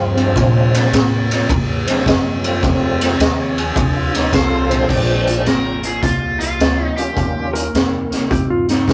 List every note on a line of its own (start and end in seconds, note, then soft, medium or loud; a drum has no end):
0.00 0.12 F2 medium
0.00 0.34 G2 loud
0.00 0.13 C3 medium
0.00 0.15 C4 medium
0.00 0.90 F4 loud
0.15 0.33 F2 medium
0.15 0.34 C3 medium
0.15 0.87 F3 medium
0.15 0.88 G#3 medium
0.15 0.88 C4 medium
0.15 0.88 D4 medium
0.15 ride medium
0.35 0.69 A#2 loud
0.35 0.91 A#2 loud
0.35 0.69 F3 medium
0.35 kick loud
0.35 snare soft
0.35 ride medium
0.72 0.90 A#2 medium
0.72 0.90 F3 medium
0.72 snare soft
0.72 ride medium
0.92 1.47 A2 medium
0.92 1.25 A#2 medium
0.92 1.26 F3 loud
0.92 snare loud
0.92 ride medium
1.29 1.47 A#2 medium
1.29 1.47 F3 medium
1.29 snare soft
1.29 ride medium
1.49 1.82 A#2 loud
1.49 1.82 G3 loud
1.49 kick loud
1.49 ride medium
1.85 2.04 A#2 medium
1.85 2.03 F3 medium
1.85 2.04 G3 medium
1.85 2.03 G#3 medium
1.85 2.04 C4 medium
1.85 2.04 D4 medium
1.85 muted upright bass stroke soft
1.85 snare soft
1.85 ride medium
2.06 2.61 F#2 loud
2.06 2.39 A#2 medium
2.06 2.40 F3 medium
2.06 kick medium
2.06 snare loud
2.06 ride loud
2.42 2.60 A#2 medium
2.42 2.61 F3 medium
2.42 3.14 G3 medium
2.42 3.14 A3 medium
2.42 3.15 C4 medium
2.42 3.15 F4 medium
2.42 ride medium
2.63 3.17 F2 medium
2.63 2.96 F2 medium
2.63 2.96 C3 medium
2.63 kick loud
2.63 snare soft
2.63 ride medium
3.00 3.17 F2 medium
3.00 3.17 C3 medium
3.00 snare soft
3.00 ride medium
3.18 3.73 D#2 loud
3.18 3.52 F2 medium
3.18 3.53 C3 loud
3.18 3.39 D#5 loud
3.18 snare loud
3.18 ride medium
3.40 3.57 C#5 loud
3.57 3.74 F2 medium
3.57 3.74 C3 medium
3.57 3.94 G#4 loud
3.57 ride medium
3.76 4.30 D2 medium
3.76 4.09 F2 loud
3.76 4.10 D3 loud
3.76 kick loud
3.76 ride medium
3.96 4.13 F4 loud
4.13 4.30 F2 medium
4.13 4.31 D3 loud
4.13 4.33 D#4 loud
4.13 snare soft
4.13 ride medium
4.32 4.87 C2 loud
4.32 4.66 F2 medium
4.32 4.66 C3 medium
4.32 4.86 F4 loud
4.32 4.89 A4 loud
4.32 4.90 C5 loud
4.32 kick medium
4.32 snare loud
4.32 ride medium
4.69 4.87 F2 medium
4.69 5.41 A#2 loud
4.69 4.87 C3 medium
4.69 5.42 F3 medium
4.69 5.42 G#3 medium
4.69 5.42 C4 medium
4.69 5.42 D4 loud
4.69 ride medium
4.89 5.44 A#1 medium
4.89 5.23 A#2 medium
4.89 5.23 F3 medium
4.89 5.47 D5 medium
4.89 kick medium
4.89 snare soft
4.89 crash medium
5.27 5.44 A#2 medium
5.27 5.44 F3 medium
5.27 closed hi-hat medium
5.46 6.01 G#1 medium
5.46 5.80 A#2 medium
5.46 5.80 F3 medium
5.46 5.85 A#4 medium
5.46 snare medium
5.46 closed hi-hat medium
5.83 6.01 A#2 medium
5.83 6.01 F3 medium
5.83 6.03 G#4 medium
5.83 closed hi-hat medium
6.02 6.57 C2 medium
6.02 6.36 A#2 medium
6.02 6.36 G3 medium
6.02 6.39 F4 medium
6.02 kick medium
6.02 closed hi-hat medium
6.39 6.57 A#2 medium
6.39 6.57 G3 medium
6.39 6.86 F4 medium
6.39 closed hi-hat medium
6.59 7.15 D2 medium
6.59 6.93 A#2 medium
6.59 6.93 F3 medium
6.59 snare loud
6.59 closed hi-hat medium
6.86 6.96 D#4 medium
6.96 7.14 A#2 medium
6.96 7.14 F3 medium
6.96 7.69 G3 medium
6.96 7.69 A#3 medium
6.96 7.70 C#4 medium
6.96 7.70 F4 medium
6.96 7.50 G4 medium
6.96 closed hi-hat medium
7.15 7.72 D#2 medium
7.15 7.50 D#3 medium
7.15 7.50 A#3 medium
7.15 kick medium
7.15 closed hi-hat medium
7.53 7.71 D#3 medium
7.53 7.71 A#3 medium
7.53 8.27 A#4 medium
7.53 closed hi-hat medium
7.73 8.08 F2 medium
7.73 8.07 D#3 medium
7.73 8.07 A#3 medium
7.73 snare loud
7.73 closed hi-hat medium
8.11 8.28 D#3 medium
8.11 8.28 A#3 medium
8.11 muted upright bass stroke soft
8.11 snare soft
8.11 closed hi-hat medium
8.30 8.86 G2 medium
8.30 8.64 D#3 medium
8.30 8.64 C4 medium
8.30 8.49 G4 medium
8.30 kick loud
8.30 closed hi-hat medium
8.50 8.68 F4 medium
8.68 8.85 D#3 medium
8.68 8.86 C4 medium
8.68 8.93 D#4 medium
8.68 snare soft
8.68 closed hi-hat medium
8.88 8.93 G#2 medium
8.88 8.93 D#3 medium
8.88 8.93 A#3 medium
8.88 kick medium
8.88 snare loud
8.88 closed hi-hat medium